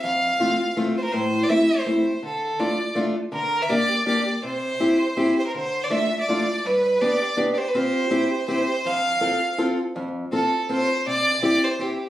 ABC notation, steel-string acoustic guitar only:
X:1
M:3/4
L:1/8
Q:"Swing" 1/4=164
K:F
V:1 name="Steel-string acoustic guitar"
F,,2 [A,CF] z [A,CF] z | A,,2 [A,CE] z [A,CE] z | D,2 [A,DF] z [A,DF] z | D,2 [B,DG] z [B,DG] z |
C,2 [CEG] z [CEG] z | D,2 [A,DF] z [A,DF] z | G,,2 [=B,DG] z [B,DG] z | [CFG]2 [CEG] z [CEG] z |
F,,2 [CFA] z [CFA] z | F,,2 [CFA] z [CFA] z | C,2 [CEG] z [CEG] z |]